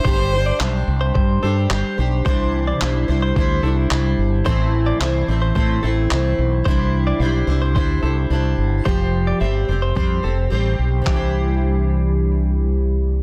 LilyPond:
<<
  \new Staff \with { instrumentName = "Clean electric guitar" } { \time 4/4 \key c \major \tempo 4 = 109 c''8 r16 d''16 e''16 r8 c''16 c''8 a'16 r4 r16 | c''8 r16 d''16 e''16 r8 c''16 c''8 a'16 r4 r16 | c''8 r16 d''16 e''16 r8 c''16 c''8 a'16 r4 r16 | c''8 r16 d''16 e''16 r8 c''16 c''8 a'16 r4 r16 |
c''8 r16 d''16 e''16 r8 c''16 c''8 a'16 r4 r16 | g'2. r4 | }
  \new Staff \with { instrumentName = "Violin" } { \time 4/4 \key c \major c''4. r2 r8 | r1 | r1 | r1 |
r1 | r1 | }
  \new Staff \with { instrumentName = "Steel-string acoustic guitar" } { \time 4/4 \key c \major <g d' g' c''>8 <d' g' c''>8 <g d' g' c''>4. <d' g' c''>8 <g d' g' c''>8 <d' g' c''>8 | <c e g d' e' c''>4 <g d' e' c''>8 <g d' e' c''>8 <g d' e' c''>8 <g d' e' c''>8 <g d' e' c''>4 | <a, e a c' e' c''>4 <a c' e' c''>8 <a c' e' c''>8 <a c' e' c''>8 <a c' e' c''>8 <a c' e' c''>4 | <c e g d' e' c''>4 <g d' e' c''>8 <g d' e' c''>8 <g d' e' c''>8 <g d' e' c''>8 <g d' e' c''>4 |
<f g c' g' c''>4 <g c' g' c''>8 <c' g' c''>8 <g c' g' c''>8 <c' g' c''>8 <g c' g' c''>4 | <c e g d' e' c''>1 | }
  \new Staff \with { instrumentName = "Fretless electric bass" } { \clef bass \time 4/4 \key c \major g,,4 b,,8 c,8 g,8 g,8 g,,16 r16 b,,8 | c,4 b,,8 c,8 d,8 c,8 c,8 g,,8 | a,,4 c,8 a,,8 a,8 a,,8 c,8 b,,8 | c,4 b,,8 c,8 d,8 c,8 c,8 g,,8 |
f,,4 g,,8 f,,8 f,8 f,,8 a,,8 b,,8 | c,1 | }
  \new DrumStaff \with { instrumentName = "Drums" } \drummode { \time 4/4 bd4 hc4 bd4 hc4 | bd4 hc4 bd4 hc4 | bd4 hc4 bd4 hc4 | bd4 r4 bd4 r4 |
bd4 r4 bd4 r4 | <hc bd>4 r4 r4 r4 | }
>>